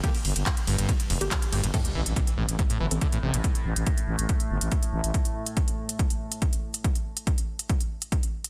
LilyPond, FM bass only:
\new Staff \with { instrumentName = "FM bass" } { \clef bass \time 4/4 \key g \dorian \tempo 4 = 141 r8 g,,16 g,,16 r8 g,,16 g,,16 r8 f,,16 g,,16 r8 g,,16 g,,16 | r8 a,,16 a,,16 r8 a,,16 a,,16 r8 g,,16 a,,16 r8 a,,16 a,,16 | r8 a,,16 a,,16 r8 a,,16 a,,16 r8 g,,16 a,,16 r8 a,,16 a,,16 | r1 |
r1 | }